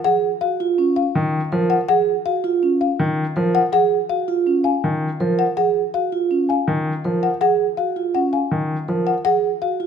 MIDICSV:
0, 0, Header, 1, 5, 480
1, 0, Start_track
1, 0, Key_signature, 6, "major"
1, 0, Tempo, 368098
1, 63, Time_signature, 5, 2, 24, 8
1, 12865, End_track
2, 0, Start_track
2, 0, Title_t, "Celesta"
2, 0, Program_c, 0, 8
2, 6061, Note_on_c, 0, 80, 58
2, 6374, Note_off_c, 0, 80, 0
2, 8462, Note_on_c, 0, 80, 52
2, 8774, Note_off_c, 0, 80, 0
2, 10862, Note_on_c, 0, 80, 58
2, 11174, Note_off_c, 0, 80, 0
2, 12865, End_track
3, 0, Start_track
3, 0, Title_t, "Marimba"
3, 0, Program_c, 1, 12
3, 59, Note_on_c, 1, 78, 76
3, 373, Note_off_c, 1, 78, 0
3, 536, Note_on_c, 1, 77, 59
3, 852, Note_off_c, 1, 77, 0
3, 1256, Note_on_c, 1, 77, 58
3, 1572, Note_off_c, 1, 77, 0
3, 2215, Note_on_c, 1, 78, 66
3, 2443, Note_off_c, 1, 78, 0
3, 2459, Note_on_c, 1, 78, 73
3, 2773, Note_off_c, 1, 78, 0
3, 2942, Note_on_c, 1, 77, 56
3, 3254, Note_off_c, 1, 77, 0
3, 3664, Note_on_c, 1, 77, 54
3, 3975, Note_off_c, 1, 77, 0
3, 4626, Note_on_c, 1, 78, 71
3, 4847, Note_off_c, 1, 78, 0
3, 4862, Note_on_c, 1, 78, 75
3, 5174, Note_off_c, 1, 78, 0
3, 5340, Note_on_c, 1, 77, 54
3, 5653, Note_off_c, 1, 77, 0
3, 6053, Note_on_c, 1, 77, 55
3, 6371, Note_off_c, 1, 77, 0
3, 7025, Note_on_c, 1, 78, 60
3, 7248, Note_off_c, 1, 78, 0
3, 7264, Note_on_c, 1, 78, 67
3, 7575, Note_off_c, 1, 78, 0
3, 7747, Note_on_c, 1, 77, 58
3, 8056, Note_off_c, 1, 77, 0
3, 8474, Note_on_c, 1, 77, 53
3, 8778, Note_off_c, 1, 77, 0
3, 9427, Note_on_c, 1, 78, 56
3, 9649, Note_off_c, 1, 78, 0
3, 9665, Note_on_c, 1, 78, 71
3, 9975, Note_off_c, 1, 78, 0
3, 10137, Note_on_c, 1, 77, 54
3, 10452, Note_off_c, 1, 77, 0
3, 10622, Note_on_c, 1, 78, 52
3, 10860, Note_on_c, 1, 77, 46
3, 10934, Note_off_c, 1, 78, 0
3, 11174, Note_off_c, 1, 77, 0
3, 11822, Note_on_c, 1, 78, 58
3, 12043, Note_off_c, 1, 78, 0
3, 12059, Note_on_c, 1, 78, 73
3, 12373, Note_off_c, 1, 78, 0
3, 12541, Note_on_c, 1, 77, 54
3, 12854, Note_off_c, 1, 77, 0
3, 12865, End_track
4, 0, Start_track
4, 0, Title_t, "Vibraphone"
4, 0, Program_c, 2, 11
4, 59, Note_on_c, 2, 68, 80
4, 373, Note_off_c, 2, 68, 0
4, 542, Note_on_c, 2, 66, 55
4, 784, Note_on_c, 2, 65, 78
4, 854, Note_off_c, 2, 66, 0
4, 1022, Note_on_c, 2, 61, 62
4, 1095, Note_off_c, 2, 65, 0
4, 1334, Note_off_c, 2, 61, 0
4, 1982, Note_on_c, 2, 70, 54
4, 2295, Note_off_c, 2, 70, 0
4, 2464, Note_on_c, 2, 68, 84
4, 2775, Note_off_c, 2, 68, 0
4, 2941, Note_on_c, 2, 66, 63
4, 3182, Note_on_c, 2, 65, 80
4, 3254, Note_off_c, 2, 66, 0
4, 3425, Note_on_c, 2, 61, 59
4, 3494, Note_off_c, 2, 65, 0
4, 3735, Note_off_c, 2, 61, 0
4, 4381, Note_on_c, 2, 70, 53
4, 4694, Note_off_c, 2, 70, 0
4, 4858, Note_on_c, 2, 68, 87
4, 5173, Note_off_c, 2, 68, 0
4, 5341, Note_on_c, 2, 66, 53
4, 5582, Note_on_c, 2, 65, 75
4, 5654, Note_off_c, 2, 66, 0
4, 5821, Note_on_c, 2, 61, 58
4, 5894, Note_off_c, 2, 65, 0
4, 6134, Note_off_c, 2, 61, 0
4, 6785, Note_on_c, 2, 70, 54
4, 7095, Note_off_c, 2, 70, 0
4, 7262, Note_on_c, 2, 68, 81
4, 7574, Note_off_c, 2, 68, 0
4, 7745, Note_on_c, 2, 66, 56
4, 7984, Note_on_c, 2, 65, 72
4, 8055, Note_off_c, 2, 66, 0
4, 8223, Note_on_c, 2, 61, 57
4, 8295, Note_off_c, 2, 65, 0
4, 8535, Note_off_c, 2, 61, 0
4, 9186, Note_on_c, 2, 70, 48
4, 9496, Note_off_c, 2, 70, 0
4, 9661, Note_on_c, 2, 68, 81
4, 9974, Note_off_c, 2, 68, 0
4, 10146, Note_on_c, 2, 66, 53
4, 10383, Note_on_c, 2, 65, 65
4, 10456, Note_off_c, 2, 66, 0
4, 10625, Note_on_c, 2, 61, 57
4, 10695, Note_off_c, 2, 65, 0
4, 10935, Note_off_c, 2, 61, 0
4, 11585, Note_on_c, 2, 70, 50
4, 11895, Note_off_c, 2, 70, 0
4, 12063, Note_on_c, 2, 68, 78
4, 12375, Note_off_c, 2, 68, 0
4, 12543, Note_on_c, 2, 66, 57
4, 12779, Note_on_c, 2, 65, 64
4, 12855, Note_off_c, 2, 66, 0
4, 12865, Note_off_c, 2, 65, 0
4, 12865, End_track
5, 0, Start_track
5, 0, Title_t, "Grand piano"
5, 0, Program_c, 3, 0
5, 1504, Note_on_c, 3, 51, 72
5, 1815, Note_off_c, 3, 51, 0
5, 1987, Note_on_c, 3, 53, 64
5, 2296, Note_off_c, 3, 53, 0
5, 3905, Note_on_c, 3, 51, 75
5, 4215, Note_off_c, 3, 51, 0
5, 4387, Note_on_c, 3, 53, 63
5, 4696, Note_off_c, 3, 53, 0
5, 6310, Note_on_c, 3, 51, 67
5, 6617, Note_off_c, 3, 51, 0
5, 6786, Note_on_c, 3, 53, 55
5, 7096, Note_off_c, 3, 53, 0
5, 8705, Note_on_c, 3, 51, 70
5, 9015, Note_off_c, 3, 51, 0
5, 9192, Note_on_c, 3, 53, 53
5, 9498, Note_off_c, 3, 53, 0
5, 11102, Note_on_c, 3, 51, 67
5, 11414, Note_off_c, 3, 51, 0
5, 11586, Note_on_c, 3, 53, 52
5, 11896, Note_off_c, 3, 53, 0
5, 12865, End_track
0, 0, End_of_file